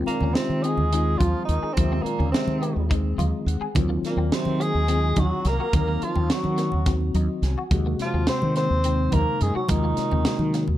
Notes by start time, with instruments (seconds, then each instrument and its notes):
Already playing: tine electric piano D#3 G#3 C4 F4, clean electric guitar C4
0.06 trombone A#2, tenor saxophone A#3, muted fretless electric bass stroke, closed hi-hat, low conga
0.21 fretless electric bass D#2, clean electric guitar C#4, low conga
0.34 trombone C3, tine electric piano D#3 G#3 C4 F4, tenor saxophone C4, snare, closed hi-hat
0.49 fretless electric bass D#3
0.63 trombone G#3, clean electric guitar C4, tenor saxophone G#4, closed hi-hat
0.77 fretless electric bass D#2, low conga
0.92 tine electric piano D#3 G#3 C4 F4, clean electric guitar D#4, closed hi-hat, low conga
1.18 fretless electric bass D#2, trombone F3, tenor saxophone F4, clean electric guitar F4, kick, closed hi-hat, high conga, low conga
1.45 fretless electric bass D#2, trombone D#3, tenor saxophone D#4, closed hi-hat
1.63 clean electric guitar G#4, muted fretless electric bass stroke
1.73 tine electric piano D#3 G#3, tenor saxophone C4
1.77 fretless electric bass D#2, trombone C3, tine electric piano C4 F4, kick, closed hi-hat, high conga, low conga
1.92 clean electric guitar C4
2.02 trombone A#2, tenor saxophone A#3, muted fretless electric bass stroke, closed hi-hat, low conga
2.19 fretless electric bass D#2, clean electric guitar C#4, low conga
2.32 trombone C3, tine electric piano D#3 G#3 C4 G#4, tenor saxophone C4, snare, closed hi-hat
2.47 fretless electric bass D#3, high conga
2.62 clean electric guitar C4, closed hi-hat
2.76 fretless electric bass D#2
2.90 tine electric piano D#3 G#3 C4 G#4, clean electric guitar D#4, kick, closed hi-hat
3.18 fretless electric bass D#2, clean electric guitar F4, tine electric piano D#5, closed hi-hat, high conga, low conga
3.46 fretless electric bass D#2, tine electric piano F#5, closed hi-hat
3.61 clean electric guitar G#4, muted fretless electric bass stroke
3.75 fretless electric bass D#2, tine electric piano D#3 F#3 C4 F4, kick, closed hi-hat, high conga, low conga
3.89 clean electric guitar A#3
4.02 tenor saxophone A#3, muted fretless electric bass stroke, snare, closed hi-hat, low conga
4.08 trombone A#2
4.17 fretless electric bass D#2, clean electric guitar C4
4.32 tine electric piano D#3 F#3 C4 F#4, tenor saxophone C4, snare, closed hi-hat
4.37 trombone C3
4.45 fretless electric bass D#3, high conga
4.60 clean electric guitar A#3, tenor saxophone G#4, closed hi-hat
4.64 trombone G#3
4.75 fretless electric bass D#2
4.88 tine electric piano D#3 F#3 C4 F4, clean electric guitar C4, closed hi-hat, low conga
5.16 fretless electric bass D#2, clean electric guitar D#4, tenor saxophone F#4, kick, closed hi-hat, high conga, low conga
5.21 trombone F#3
5.45 fretless electric bass C2, tenor saxophone A#4, snare, closed hi-hat
5.50 trombone A#3
5.60 clean electric guitar F#4
5.72 fretless electric bass D#2, tine electric piano D#3 F#3 C4 D#4, kick, closed hi-hat, high conga, low conga
5.88 clean electric guitar A#3
6.01 trombone F3, tenor saxophone F4, muted fretless electric bass stroke, closed hi-hat, low conga
6.16 fretless electric bass D#2, clean electric guitar C4, low conga
6.29 tine electric piano D#3 F#3 C4 F#4, trombone F#3, tenor saxophone F#4, snare, closed hi-hat
6.44 fretless electric bass D#3, high conga, low conga
6.58 clean electric guitar A#3, snare, closed hi-hat
6.72 fretless electric bass D#2, low conga
6.86 tine electric piano D#3 F#3 C4 F#4, clean electric guitar C4, kick, snare, closed hi-hat, low conga
7.01 low conga
7.14 fretless electric bass D#2, clean electric guitar D#4, tine electric piano D#5, closed hi-hat, high conga
7.42 fretless electric bass C2, tine electric piano G#5, snare, closed hi-hat
7.57 clean electric guitar F#4, muted fretless electric bass stroke, low conga
7.71 fretless electric bass D#2, tine electric piano C3 G#3 A#3 F#4, kick, closed hi-hat, high conga, low conga
7.86 clean electric guitar A#3
7.99 tenor saxophone F4, muted fretless electric bass stroke, snare, closed hi-hat, low conga
8.04 trombone F3
8.14 fretless electric bass D#2, clean electric guitar C4
8.27 tine electric piano C3 G#3 A#3 F#4, trombone C4, tenor saxophone C5, snare, closed hi-hat
8.42 fretless electric bass D#3, high conga
8.56 clean electric guitar A#3, trombone C4, tenor saxophone C5, snare, closed hi-hat
8.70 fretless electric bass D#2
8.84 tine electric piano C3 G#3 A#3 D#4, clean electric guitar C4, closed hi-hat
9.12 fretless electric bass D#2, trombone A#3, clean electric guitar D#4, tenor saxophone A#4, kick, closed hi-hat, high conga, low conga
9.41 fretless electric bass F#2, trombone G#3, tenor saxophone G#4, closed hi-hat
9.55 trombone F#3, clean electric guitar F#4, tenor saxophone F#4, muted fretless electric bass stroke
9.69 fretless electric bass D#2, tine electric piano C3 G#3 A#3 F4, trombone D#3, tenor saxophone D#4, kick, closed hi-hat, high conga, low conga
9.84 clean electric guitar A#3
9.97 muted fretless electric bass stroke, snare, closed hi-hat
10.11 fretless electric bass D#2, clean electric guitar C4, low conga
10.25 tine electric piano C3 G#3 A#3 F#4, snare, closed hi-hat
10.39 fretless electric bass D#3, high conga
10.54 clean electric guitar A#3, snare, closed hi-hat
10.68 fretless electric bass D#2, low conga